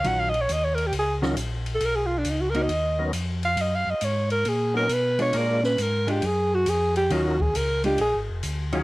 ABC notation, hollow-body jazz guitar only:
X:1
M:4/4
L:1/8
Q:"Swing" 1/4=136
K:Ebm
V:1 name="Hollow-body jazz guitar"
[E,G,DF] z4 [E,G,DF] z2 | z3 [^A,^D^F] z4 | z6 z [A,=DF] | z3 [A,=DF] z4 |
[E,G,DF] z2 [A,=DF] z3 [E,G,_DF] |]